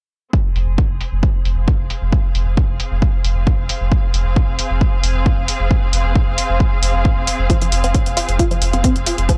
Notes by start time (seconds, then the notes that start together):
0.33 C4, kick
0.43 G#4
0.56 F1, open hi-hat
0.67 F1
0.78 kick
0.90 F1
1.01 open hi-hat
1.12 F1
1.23 kick
1.45 F1, open hi-hat
1.57 F1 F5
1.68 kick
1.79 F1
1.90 open hi-hat
2.02 F1
2.13 kick
2.35 F1, open hi-hat
2.46 F1
2.57 kick
2.69 F1
2.80 open hi-hat
2.91 F1
3.02 kick
3.24 F1, open hi-hat
3.36 F1
3.47 kick
3.58 F1
3.69 open hi-hat
3.81 F1
3.92 kick
4.14 F1, open hi-hat
4.26 F1
4.36 kick
4.48 F1
4.59 open hi-hat
4.70 F1
4.81 kick
5.03 F1, open hi-hat
5.15 F1
5.26 kick
5.37 F1
5.48 open hi-hat
5.60 F1
5.71 kick
5.93 F1, open hi-hat
6.05 F1
6.16 kick
6.27 F1
6.38 open hi-hat
6.50 F1
6.60 kick
6.83 F1, open hi-hat
6.94 F1
7.05 kick
7.17 F1
7.27 open hi-hat
7.39 F1
7.50 F3, kick, closed hi-hat
7.62 F3, closed hi-hat
7.72 F1, open hi-hat
7.84 F1 C4, closed hi-hat
7.95 C#4, kick, closed hi-hat
8.06 F1, closed hi-hat
8.17 F4, open hi-hat
8.29 F1, closed hi-hat
8.39 F4, kick, closed hi-hat
8.51 F3, closed hi-hat
8.62 F1, open hi-hat
8.73 F1 C4, closed hi-hat
8.84 C4, kick, closed hi-hat
8.96 F1, closed hi-hat
9.06 F4, open hi-hat
9.18 F1, closed hi-hat
9.29 F3, kick, closed hi-hat